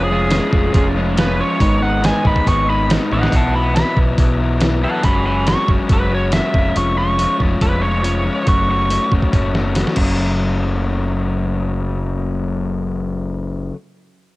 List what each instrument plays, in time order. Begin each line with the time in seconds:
Already playing: fingered electric bass F1, overdriven electric guitar G#3 C#4 F4
0.04 lead electric guitar G#4
0.10 overdriven electric guitar F3 G#3 C#4 F4
0.30 overdriven electric guitar F3 G#3 C#4 F4, snare, open hi-hat
0.51 fingered electric bass F1, overdriven electric guitar F3 G#3 C#4 F4, kick
0.73 fingered electric bass F1, overdriven electric guitar F3 G#3 C#4 F4, kick, open hi-hat
0.94 overdriven electric guitar F3 G#3 C#4 F4
1.16 overdriven electric guitar F3 G#3 C#4 F4, lead electric guitar B4, snare, open hi-hat
1.38 overdriven electric guitar F3 G#3 C#4 F4, lead electric guitar C#5
1.59 fingered electric bass G#1, overdriven electric guitar G#2 D#3 G#3 B3 D#4, kick, open hi-hat
1.81 overdriven electric guitar G#2 D#3 G#3 B3 D#4, lead electric guitar F#5
2.01 overdriven electric guitar G#2 D#3 G#3 B3 D#4, snare, open hi-hat
2.06 lead electric guitar G#5
2.24 fingered electric bass G#1, overdriven electric guitar G#2 D#3 G#3 B3 D#4, lead electric guitar B5, kick
2.36 kick
2.46 fingered electric bass G#1, overdriven electric guitar G#2 D#3 G#3 B3 D#4, lead electric guitar C#6, kick, open hi-hat
2.67 overdriven electric guitar G#2 D#3 G#3 B3 D#4, lead electric guitar B5
2.89 overdriven electric guitar G#2 D#3 G#3 B3 D#4, snare, open hi-hat
3.11 fingered electric bass A1, overdriven electric guitar G#2 D#3 G#3 B3 D#4, lead electric guitar D#5 F#5, high tom
3.23 snare
3.32 fingered electric bass B1, overdriven electric guitar B2 E3 F#3 B3 E4, lead electric guitar F#5, kick, open hi-hat
3.36 lead electric guitar A5
3.53 overdriven electric guitar B2 E3 F#3 B3 E4, lead electric guitar F#5 B5
3.75 overdriven electric guitar B2 E3 F#3 B3 E4, lead electric guitar B5, snare, open hi-hat
3.96 fingered electric bass B1, overdriven electric guitar B2 E3 F#3 B3 E4, kick
4.17 fingered electric bass B1, overdriven electric guitar B2 E3 F#3 B3 E4, kick, open hi-hat
4.39 overdriven electric guitar B2 E3 F#3 B3 E4
4.60 overdriven electric guitar B2 E3 F#3 B3 E4, snare, open hi-hat
4.81 overdriven electric guitar B2 E3 F#3 B3 E4, lead electric guitar A4 F#5
5.02 fingered electric bass F#1, overdriven electric guitar F#3 G#3 C#4 F#4, lead electric guitar G#5 B5, kick, open hi-hat
5.25 overdriven electric guitar F#3 G#3 C#4 F#4, lead electric guitar G#5 B5
5.46 overdriven electric guitar F#3 G#3 C#4 F#4, lead electric guitar C#6, snare, open hi-hat
5.68 fingered electric bass F#1, overdriven electric guitar F#3 G#3 C#4 F#4, kick
5.89 fingered electric bass F#1, overdriven electric guitar F#3 G#3 C#4 F#4, lead electric guitar B4, kick, open hi-hat
6.10 overdriven electric guitar F#3 G#3 C#4 F#4
6.15 lead electric guitar C#5
6.32 overdriven electric guitar F#3 G#3 C#4 F#4, lead electric guitar E5, snare, open hi-hat
6.54 fingered electric bass F1, overdriven electric guitar F3 G#3 C#4 F4, kick
6.76 fingered electric bass F1, overdriven electric guitar F3 G#3 C#4 F4, lead electric guitar C#6, open hi-hat
6.97 overdriven electric guitar F3 G#3 C#4 F4, lead electric guitar C#6
7.18 overdriven electric guitar F3 G#3 C#4 F4, open hi-hat
7.39 fingered electric bass F1, overdriven electric guitar F3 G#3 C#4 F4, kick
7.60 fingered electric bass F1, overdriven electric guitar F3 G#3 C#4 F4, lead electric guitar B4, kick, open hi-hat
7.82 overdriven electric guitar F3 G#3 C#4 F4, lead electric guitar C#5
8.03 overdriven electric guitar F3 G#3 C#4 F4, lead electric guitar C#5, open hi-hat
8.25 overdriven electric guitar F3 G#3 C#4 F4
8.46 fingered electric bass F#1, overdriven electric guitar F#3 A3 C#4 F#4, lead electric guitar C#6, kick, open hi-hat
8.68 overdriven electric guitar F#3 A3 C#4 F#4, lead electric guitar C#6
8.90 overdriven electric guitar F#3 A3 C#4 F#4, open hi-hat
9.11 fingered electric bass F#1, overdriven electric guitar F#3 A3 C#4 F#4, kick
9.22 kick
9.33 fingered electric bass F#1, overdriven electric guitar F#3 A3 C#4 F#4, kick, open hi-hat, high tom
9.54 overdriven electric guitar F#3 A3 C#4 F#4, snare
9.75 overdriven electric guitar F#3 A3 C#4 F#4, snare, open hi-hat
9.87 snare
9.96 fingered electric bass F#1, overdriven electric guitar F#2 C#3 F#3 A3 C#4, kick, crash